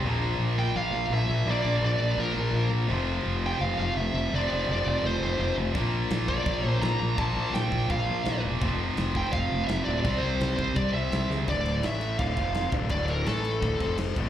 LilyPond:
<<
  \new Staff \with { instrumentName = "Lead electric guitar" } { \time 4/4 \key bes \lydian \tempo 4 = 168 r4. g''8 f''4 e''4 | d''4 d''4 bes'4. r8 | r4. g''8 f''8 f''8 e''4 | d''4 d''4 c''4. r8 |
r4. d''4. bes''8 bes''8 | a''4 g''4 f''4. r8 | r4. g''8 f''4 e''8 d''8~ | d''8 c''4 c''8 d''8 e''4 r8 |
d''4 e''4 f''4. r8 | d''8 bes'8 a'2 r4 | }
  \new Staff \with { instrumentName = "Distorted electric guitar" } { \clef bass \time 4/4 \key bes \lydian <bes, f bes>1 | <bes, f bes>1 | <f, c f>1 | <f, c f>1 |
<bes, f bes>1 | <bes, f bes>1 | <f, c f>1 | <c g c'>1 |
r1 | r1 | }
  \new Staff \with { instrumentName = "Distorted electric guitar" } { \clef bass \time 4/4 \key bes \lydian <bes, f bes>1 | <bes, f bes>1 | <f, c f>1 | <f, c f>1 |
<bes, f bes>1 | <bes, f bes>1 | <f, c f>1 | <c g c'>1 |
<d, a, d>4 <a, e a>4 <d, a, d>8 <f, c f>4 <d, a, d>8 | <d, a, d>4 <a, e a>4 <d, a, d>8 <f, c f>4 <d, a, d>8 | }
  \new Staff \with { instrumentName = "Fingered electric bass" } { \clef bass \time 4/4 \key bes \lydian bes,,4 bes,,4 bes,,8 bes,,8 bes,,8 bes,,8 | bes,,8 bes,,8 bes,,8 bes,,8 bes,,8 bes,,8 bes,,8 bes,,8 | f,,4 f,,4 f,,8 f,,8 f,,8 f,,8 | f,,8 f,,8 f,,8 f,,8 f,,8 f,,8 f,,8 f,,8 |
bes,,4 bes,,4 bes,,8 bes,,8 bes,,8 bes,,8 | bes,,8 bes,,8 bes,,8 bes,,8 bes,,8 bes,,8 bes,,8 e,,8 | f,,4 f,,4 f,,8 f,,8 f,,8 d,,8 | c,8 c,8 c,8 c,8 c,8 c,8 c,8 cis,8 |
d,,4 a,,4 d,,8 f,,4 d,,8 | d,,4 a,,4 d,,8 f,,4 d,,8 | }
  \new DrumStaff \with { instrumentName = "Drums" } \drummode { \time 4/4 r4 r4 r4 r4 | r4 r4 r4 r4 | r4 r4 r4 r4 | r4 r4 r4 r4 |
<cymc bd>4 <cymc sn>8 bd8 <cymc bd>4 <cymc sn>4 | <cymc bd>4 <cymc sn>8 bd8 <cymc bd>4 <cymc sn>4 | <cymc bd>4 <cymc sn>8 bd8 <cymc bd>4 <cymc sn>4 | <cymc bd>4 <cymc sn>8 bd8 <cymc bd>4 <cymc sn>8 sn8 |
<cymc bd>8 cymc8 <cymc sn>8 cymc8 <cymc bd>8 <cymc bd sn>8 <cymc sn>8 <cymc bd>8 | <cymc bd>8 cymc8 <cymc sn>8 cymc8 <cymc bd>8 <cymc bd sn>8 <cymc sn>8 <cymc bd>8 | }
>>